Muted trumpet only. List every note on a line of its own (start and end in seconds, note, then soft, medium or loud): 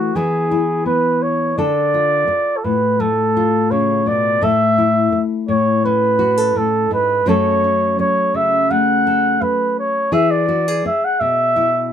0.00 0.17 F#4 medium
0.16 0.85 G#4 medium
0.86 1.24 B4 medium
1.22 1.57 C#5 medium
1.58 2.58 D5 medium
2.57 2.66 A4 medium
2.64 3.02 B4 medium
3.00 3.72 A4 medium
3.71 4.09 C#5 medium
4.07 4.45 D5 medium
4.43 5.23 E5 loud
5.49 5.82 C#5 medium
5.85 6.59 B4 medium
6.57 6.92 A4 medium
6.93 7.29 B4 medium
7.28 7.99 C#5 loud
7.99 8.37 C#5 medium
8.35 8.72 E5 loud
8.71 9.43 F#5 loud
9.42 9.77 B4 medium
9.79 10.15 C#5 medium
10.13 10.32 E5 medium
10.31 10.84 D5 medium
10.86 11.06 E5 medium
11.04 11.21 F#5 medium
11.20 11.93 E5 loud